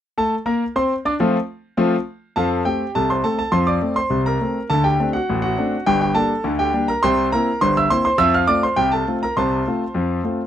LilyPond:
<<
  \new Staff \with { instrumentName = "Grand piano" } { \time 2/4 \key f \major \tempo 4 = 103 r16 <a a' a''>8 <bes bes' bes''>8 <c' c'' c'''>8 <d' d'' d'''>16 | <f a c' f'>8 r8 <f a c' f'>8 r8 | <a' f'' a''>8 <g' g''>8 <a' a''>16 <c'' c'''>16 <a' a''>16 <a' a''>16 | <c'' c'''>16 <d'' d'''>8 <c'' c'''>8 <bes' bes''>8. |
<a' a''>16 <g' g''>8 <fis' fis''>8 <fis' fis''>8. | <g' g''>16 <g' g''>16 <a' a''>8. <g' g''>8 <bes' bes''>16 | <c'' g'' c'''>8 <bes' bes''>8 <c'' c'''>16 <e'' e'''>16 <c'' c'''>16 <c'' c'''>16 | <e'' e'''>16 <f'' f'''>16 <d'' d'''>16 <c'' c'''>16 <g' g''>16 <a' a''>8 <bes' bes''>16 |
<c'' a'' c'''>2 | }
  \new Staff \with { instrumentName = "Grand piano" } { \time 2/4 \key f \major r2 | r2 | <f, f>8 <a c'>8 <c, c>8 <a c'>8 | <f, f>8 <a c'>8 <c, c>8 <a c'>8 |
<d, d>8 <a c' d'>8 <a,, a,>8 <a c' d'>8 | <g,, g,>8 <g bes d'>8 <d, d>8 <g bes d'>8 | <c, c>8 <bes c' e'>8 <g,, g,>8 <bes c' e'>8 | <f, f>8 <a c' f'>8 <c, c>8 <a c' f'>8 |
<c, c>8 <a c' f'>8 <f, f>8 <a c' f'>8 | }
>>